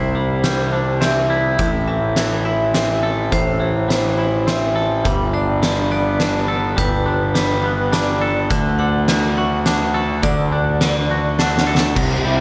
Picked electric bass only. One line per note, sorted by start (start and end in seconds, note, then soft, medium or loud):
0.00 1.56 C2 medium
1.59 3.29 A1 medium
3.32 5.02 A1 medium
5.05 6.75 G1 medium
6.78 8.47 G1 medium
8.51 10.20 D2 medium
10.24 11.93 D2 medium
11.96 12.16 C2 medium
12.25 12.40 C2 medium